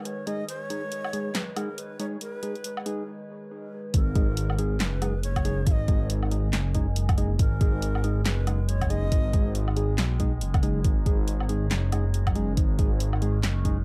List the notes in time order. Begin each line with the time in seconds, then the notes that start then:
Already playing: D#3 G#3 B4
0.05 C#5, closed hi-hat
0.27 G#3 D#4 G#4 D#5, closed hi-hat
0.48 C#5, closed hi-hat
0.70 G#3 D#4 G#4, closed hi-hat
0.92 closed hi-hat
1.05 low woodblock
1.13 G#3 D#4 G#4, closed hi-hat
1.35 B4, snare, clap, closed hi-hat
1.56 G#3 D#4 G#4 A#4, closed hi-hat, low woodblock
1.78 B4, closed hi-hat
2.00 G#3 D#4 G#4 C#5, closed hi-hat
2.21 B4, closed hi-hat
2.43 G#3 D#4 G#4, closed hi-hat
2.56 closed hi-hat
2.64 closed hi-hat
2.77 low woodblock
2.86 G#3 D#4 G#4, closed hi-hat
3.94 G#1 D#3 G#3 G#4 A#4, kick, closed hi-hat
4.15 G#3 D#4 G#4, kick, closed hi-hat
4.37 closed hi-hat
4.50 low woodblock
4.59 G#3 D#4 G#4, closed hi-hat
4.80 F#1 B4, snare, clap, closed hi-hat
5.02 G#3 D#4 G#4, closed hi-hat, low woodblock
5.23 C#5, closed hi-hat
5.36 kick, closed hi-hat, low woodblock
5.45 G#3 D#4 G#4, closed hi-hat
5.67 G#1 F5, kick, closed hi-hat
5.71 D#5
5.88 G#3 D#4 G#4, kick, closed hi-hat
6.10 closed hi-hat
6.23 low woodblock
6.31 G#3 D#4 G#4, closed hi-hat
6.53 F#1, snare, clap, closed hi-hat
6.75 G#3 D#4 G#4, kick, closed hi-hat
6.96 closed hi-hat
7.09 kick, closed hi-hat, low woodblock
7.18 G#3 D#4 G#4, closed hi-hat
7.39 G#1 A#4, kick, closed hi-hat
7.61 G#3 D#4 G#4, kick, closed hi-hat
7.82 closed hi-hat
7.95 low woodblock
8.04 G#3 D#4 G#4, closed hi-hat
8.26 F#1 B4, snare, clap, closed hi-hat
8.47 G#3 D#4 G#4, closed hi-hat, low woodblock
8.69 C#5, closed hi-hat
8.81 kick, closed hi-hat, low woodblock
8.90 G#3 D#4 G#4 D#5, closed hi-hat
9.12 G#1, kick, closed hi-hat
9.33 G#3 D#4 G#4, kick, closed hi-hat
9.55 closed hi-hat
9.68 low woodblock
9.77 G#3 D#4 G#4, closed hi-hat
9.98 B1, snare, clap, closed hi-hat
10.20 G#3 D#4 G#4, kick, closed hi-hat
10.41 F#1, closed hi-hat
10.54 kick, closed hi-hat, low woodblock
10.63 G#3 D#4 G#4, closed hi-hat
10.84 G#1 C#5, kick, closed hi-hat
11.06 G#3 D#4 G#4, kick, closed hi-hat
11.28 closed hi-hat
11.40 low woodblock
11.49 G#3 D#4 G#4, closed hi-hat
11.71 F#1, snare, clap, closed hi-hat
11.92 G#3 D#4 G#4, closed hi-hat, low woodblock
12.14 closed hi-hat
12.27 kick, closed hi-hat, low woodblock
12.36 G#3 D#4 G#4, closed hi-hat
12.57 G#1, kick, closed hi-hat
12.79 G#3 D#4 G#4, kick, closed hi-hat
13.00 closed hi-hat
13.13 low woodblock
13.22 G#3 D#4 G#4, closed hi-hat
13.43 F#1, snare, clap, closed hi-hat
13.65 G#3 D#4 G#4, kick, closed hi-hat